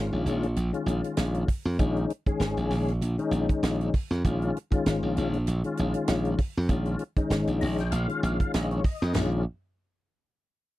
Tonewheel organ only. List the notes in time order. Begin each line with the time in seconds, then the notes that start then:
Already playing: D#3 G#3 C#4 F4
0.73 D#3 G#3 C#4 F4
1.78 D#3 G#3 C#4 D#4
2.26 D#3 G#3 C#4 G#4
3.18 D#3 G#3 C#4 D#4
4.24 D#3 G#3 C#4 F4
4.71 D#3 G#3 C#4 F4
5.64 D#3 G#3 C#4 F4
6.70 D#3 G#3 C#4 F4
7.17 D#3 G#3 C#4 D#4
7.61 A#5
7.79 G5
7.92 F5
8.08 D#3 G#3 C#4 F4
8.23 F5
8.54 D#5
8.71 C#5
8.85 D#5
9.15 D#3 G#3 C#4 F4